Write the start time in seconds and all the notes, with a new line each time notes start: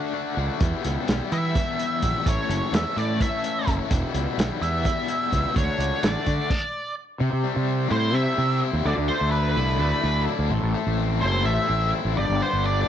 Already playing: D3 A3 D4 F#4 A4 D5 F#5
0.13 A3 D4 F#4
0.37 C#2 D3 A3 D4 F#4
0.60 E2 B2 E3 G3 B3 E4 B4 E5 G5, kick, closed hi-hat
0.84 C#2 E3 G3 B3 E4, snare, closed hi-hat
1.08 B1 E3 G3 B3 E4, snare, closed hi-hat
1.31 E3 G3 B3 E4 E5, closed hi-hat
1.55 E2 B2 E3 G3 B3 E4, kick, closed hi-hat
1.79 E3 G3 B3 E4, closed hi-hat
2.02 A#1 E2 B2 E3 G3 B3 E4, kick, closed hi-hat
2.26 A1 A2 E3 A3 C#4 E4 C#5 A5, kick, closed hi-hat
2.49 F#1 A3 C#4 E4, closed hi-hat
2.72 E2 E3 A3 C#4 E4 E5, snare, closed hi-hat
2.96 A2 A3 C#4 E4 D5, closed hi-hat
3.20 A2 E3 A3 C#4 E4 E5, kick, closed hi-hat
3.44 A3 C#4 E4, closed hi-hat
3.66 F#1 A2 E3 A3 C#4 E4, kick, closed hi-hat
3.90 E1 E2 B2 E3 G3 B3 E4 B4 G5, kick, closed hi-hat
4.14 C#2 E3 G3 B3 E4, closed hi-hat
4.38 B1 E3 G3 B3 E4, snare, closed hi-hat
4.61 E2 E3 G3 B3 E4 E5, closed hi-hat
4.84 E2 B2 E3 G3 B3 E4, kick, closed hi-hat
5.08 E3 G3 B3 E4, closed hi-hat
5.32 C#2 E2 B2 E3 G3 B3 E4, kick, closed hi-hat
5.55 D2 D3 A3 D4 F#4 A4 C#5 F#5, kick, closed hi-hat
5.78 C#2 A3 D4 F#4, closed hi-hat
6.03 A1 D3 A3 D4 F#4 D5, snare, closed hi-hat
6.26 D3 A3 D4 F#4, kick, closed hi-hat
6.50 kick, crash
7.21 C3 C5 E5 G5
7.33 C3
7.44 G3
7.56 C3
7.68 C4
7.91 A2 E4 C5
8.14 C3 G3 E5
8.38 C3 C4
8.63 E4
8.73 D#2
8.85 D2 D3 D5 E5 A5
8.97 D2
9.09 A3 C5
9.21 D2
9.31 D4 B4
9.57 C2 E4
9.80 D2 A3
10.03 D2 D4
10.28 E4
10.39 D2
10.50 A1 A2 C5
10.63 A1
10.74 A3
10.87 A1
10.98 C4
11.21 F#1 E4 C5
11.45 A1 A3 E5
11.68 A1 C4
11.92 E4
12.05 A1
12.16 G1 G2 B4 D5 G5
12.29 G1
12.41 B3 C5
12.53 G1
12.64 D4 D5